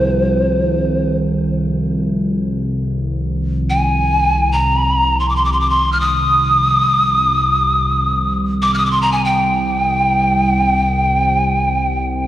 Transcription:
Already playing: C2 C3 D#3 F3 C5
2.59 C2
3.70 G#5
4.52 A#5
5.20 C6
5.29 D6
5.36 C6
5.45 D6
5.52 C6
5.60 D6
5.70 C6
5.92 F6
6.00 D#6
8.62 D6
8.74 D#6 F6
8.86 D6
8.91 C6
9.02 A#5
9.12 G#5
9.25 G5

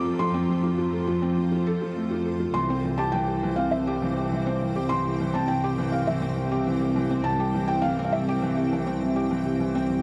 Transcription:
Already playing: F2 F3 C4 F4 A4 C5 D6
0.05 A4
0.19 F3 C6
0.34 C4
0.49 F3
0.63 F4
0.78 F3
0.93 A4
1.07 F3
1.22 C4
1.37 F3
1.52 F4
1.67 A4
1.82 F3
1.96 A3
2.11 F4
2.25 A4
2.40 F4
2.54 C2 E3 C4 C6
2.70 C4
2.84 E3
2.98 G4 A5
3.12 E3 G5
3.28 G4
3.34 G5
3.43 E3
3.56 C4 F5
3.71 E3 E5
3.87 G4
4.02 E3
4.17 G4
4.32 E3
4.46 C4
4.62 E3
4.76 G4
4.89 E3 C6
5.06 G4
5.20 E3
5.34 C4 A5
5.48 E3 G5
5.64 G4
5.78 E3
5.92 G4 F5
6.07 E3 E5
6.22 C4
6.37 E3
6.51 G4
6.67 E3
6.81 G4
6.96 E3
7.10 C4
7.22 E3 G5 A5
7.40 G4
7.54 E3
7.68 G4 G5
7.82 E3 F5
7.99 C4
8.05 F5
8.12 E3 E5
8.29 G4
8.42 E3
8.57 G4
8.72 E3
8.87 C4
9.01 E3
9.16 G4
9.31 E3
9.46 G4
9.60 E3
9.75 C4
9.90 E3

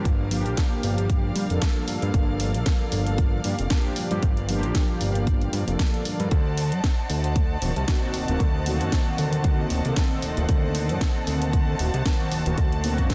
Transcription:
Already playing: G3 A#3 D5 F5
0.05 G1, kick, closed hi-hat
0.30 F3 A#3 D4 G4, open hi-hat
0.46 A#1, closed hi-hat
0.57 kick, snare, closed hi-hat
0.83 G1, open hi-hat
0.98 closed hi-hat
1.10 kick, closed hi-hat
1.36 G2, open hi-hat
1.49 F1 F3 A#3 D4 A4, closed hi-hat
1.62 kick, snare, closed hi-hat
1.88 G2, open hi-hat
2.02 G2, closed hi-hat
2.14 G1, kick, closed hi-hat
2.40 open hi-hat
2.54 A#1, closed hi-hat
2.66 kick, snare, closed hi-hat
2.92 G1, open hi-hat
3.07 closed hi-hat
3.18 kick, closed hi-hat
3.44 G2 F3 A#3 D4 G4, open hi-hat
3.59 F1, closed hi-hat
3.70 F3 A#3 D4 G4, kick, snare, closed hi-hat
3.96 G2, open hi-hat
4.10 G2 F3 A#3 D4 G4, closed hi-hat
4.23 G1, kick, closed hi-hat
4.37 closed hi-hat
4.48 F3 A#3 D4 G4, open hi-hat
4.63 A#1, closed hi-hat
4.75 kick, snare, closed hi-hat
5.01 G1, open hi-hat
5.15 closed hi-hat
5.27 kick, closed hi-hat
5.42 closed hi-hat
5.53 G2, open hi-hat
5.66 F1 F3 A#3 D4 A4, closed hi-hat
5.79 kick, snare, closed hi-hat
5.94 closed hi-hat
6.05 G2, open hi-hat
6.20 G2, closed hi-hat
6.31 D2 C5 D#5 F#5 A5, kick, closed hi-hat
6.58 open hi-hat
6.72 F#2, closed hi-hat
6.84 kick, snare, closed hi-hat
7.10 D2, open hi-hat
7.24 closed hi-hat
7.36 kick, closed hi-hat
7.62 D1 D#3 A#3 C4 F#4, open hi-hat
7.76 C2, closed hi-hat
7.88 D#3 A#3 C4 F#4, kick, snare, closed hi-hat
8.14 D1, open hi-hat
8.28 D1 D#3 A#3 C4 F#4, closed hi-hat
8.40 D2, kick, closed hi-hat
8.66 D#3 A#3 C4 F#4, open hi-hat
8.81 F#2, closed hi-hat
8.92 kick, snare, closed hi-hat
9.18 D2, open hi-hat
9.33 closed hi-hat
9.44 kick, closed hi-hat
9.70 D1, open hi-hat
9.84 C2 D#3 A#3 C4 A4, closed hi-hat
9.96 kick, snare, closed hi-hat
10.22 D1, open hi-hat
10.37 D1, closed hi-hat
10.48 D2 A5, kick, closed hi-hat
10.75 open hi-hat
10.89 F#2, closed hi-hat
11.01 kick, snare, closed hi-hat
11.27 D2, open hi-hat
11.42 closed hi-hat
11.53 kick, closed hi-hat
11.79 D1 D#3 A#3 C4 F#4, open hi-hat
11.94 C2, closed hi-hat
12.05 D#3 A#3 C4 F#4, kick, snare, closed hi-hat
12.32 D1, open hi-hat
12.46 D1 D#3 A#3 C4 F#4, closed hi-hat
12.58 D2, kick, closed hi-hat
12.72 closed hi-hat
12.83 D#3 A#3 C4 F#4, open hi-hat
12.98 F#2, kick, closed hi-hat
13.10 kick, snare, closed hi-hat

